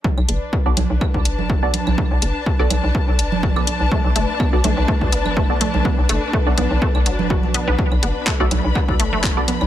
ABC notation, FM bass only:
X:1
M:4/4
L:1/16
Q:"Swing 16ths" 1/4=124
K:Bm
V:1 name="FM bass" clef=bass
z B,,, F,,, z2 B,,, B,,, B,,, z B,,, F,,,3 B,,, z B,,, | z B,,, F,,, z2 B,,, B,,, B,,, z B,,, F,,,3 B,,, z B,,, | z B,,, F,,, z2 B,,, B,,, B,,, z B,,, F,,,3 B,,, z B,,, | z B,,, F,,, z2 B,,, B,,, B,,, z B,,, F,,,3 B,,, z B,,, |
z B,,, F,,, z2 B,,, B,,, B,,, z B,,, F,,,3 B,,, z B,,, |]